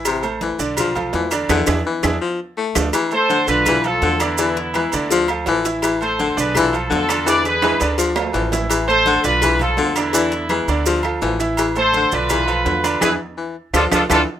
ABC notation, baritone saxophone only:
X:1
M:4/4
L:1/8
Q:1/4=167
K:Am
V:1 name="Baritone saxophone" clef=bass
C,2 E,2 F,2 E,2 | D,2 E,2 F,2 A,2 | E,2 D,2 E,2 D,2 | E,2 E,2 F,2 E,2 |
E,2 D,2 E,2 D,2 | E,2 E,2 F,2 E,2 | E,2 D,2 E,2 D,2 | E,2 E,2 F,2 E,2 |
E,2 D,2 E,2 D,2 | E,2 E,2 F,2 E,2 |]